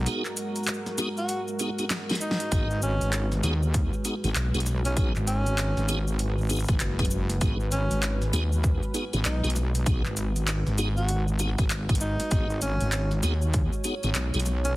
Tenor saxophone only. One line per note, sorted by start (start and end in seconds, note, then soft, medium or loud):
1.18 1.41 F#4 medium
2.21 2.82 D#4 medium
2.82 3.32 C#4 medium
4.85 4.93 C#4 medium
4.97 5.09 C#4 medium
5.27 6.14 C#4 loud
7.72 8.22 C#4 loud
9.25 9.51 D#4 medium
10.97 11.20 F#4 loud
12.01 12.61 D#4 loud
12.62 13.12 C#4 medium
14.64 14.72 C#4 medium